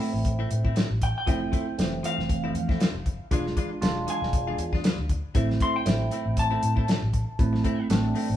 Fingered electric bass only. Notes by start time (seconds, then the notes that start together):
0.14 A1
0.51 A2
0.90 A1
1.27 F1
1.79 F1
2.18 F1
2.54 F2
2.94 F1
3.31 E1
3.82 E1
4.22 E1
4.59 E2
4.99 D2
5.35 A1
5.86 A1
6.26 A1
6.63 A2
7.02 A1
7.39 A1
7.90 A1
8.30 A1